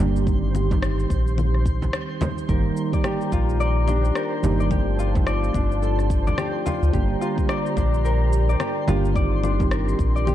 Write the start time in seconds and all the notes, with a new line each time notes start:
Already playing: G4 C5 D5 A#5
0.00 G1 D3 G3 A#3 D4 G4, frame drum
0.16 shaker
0.26 D#3 G3 C4 D#4 G4 C6, kick, shaker
0.55 low conga, shaker
0.70 D#3 G3 C4 D#4 G4, kick, frame drum, shaker
0.83 cross-stick, shaker
0.99 shaker
1.10 A#1, kick, shaker
1.27 shaker
1.38 low conga, shaker
1.55 cross-stick
1.66 kick, shaker
1.82 frame drum, shaker
1.93 cross-stick, shaker
2.21 low conga, frame drum, shaker
2.38 shaker
2.48 G1 D#3 G3 A#3 D#4 G4 A#4 A#5, kick, shaker
2.77 shaker
2.91 D#3 G3 A#3 D5, kick, shaker
2.95 G4
3.04 G4, cross-stick, low conga, shaker
3.21 shaker
3.32 A#1 F4, kick, shaker
3.49 shaker
3.60 D5, shaker
3.88 D4, low conga, shaker
4.05 shaker
4.15 A#4, cross-stick, shaker
4.42 G1 D#3 G3 A#3 D#4 G4, frame drum, shaker
4.60 D5, shaker
4.70 F3 A3 C4 D#4 F4 G4 A5, kick, low conga, shaker
4.99 F4, shaker
5.14 F3 A3 C4 D#4 G4, kick, frame drum, shaker
5.27 D5, cross-stick, shaker
5.44 shaker
5.54 G1 D4, kick, low conga, shaker
5.72 shaker
5.82 A4, shaker
5.99 cross-stick, shaker
6.10 kick, shaker
6.27 D5, frame drum, shaker
6.38 G4, cross-stick, low conga, shaker
6.66 F4, frame drum, shaker
6.82 D2, shaker
6.92 G1 D3 G3 A#3 D4 G4 D5 A#5, kick, low conga, shaker
7.21 F4, shaker
7.36 D3 G3 A#3 D4, kick, shaker
7.40 G4
7.49 D5, cross-stick, shaker
7.66 shaker
7.77 A#1 D4, kick, low conga, shaker
7.94 shaker
8.05 A#4, shaker
8.33 shaker
8.49 D5, shaker
8.60 G4, cross-stick, low conga, shaker
8.87 G1 D3 G3 A#3 D4 F4 G4, frame drum, shaker
9.05 shaker
9.15 D#3 G3 C4 D#4 G4 D5 C6, kick, shaker
9.43 D4, low conga, shaker
9.59 D#3 G3 C4 D#4 G4, kick, frame drum, shaker
9.71 A#4, cross-stick, shaker
9.88 shaker
9.99 A#1, kick, shaker
10.16 D5, shaker
10.27 G4, low conga, shaker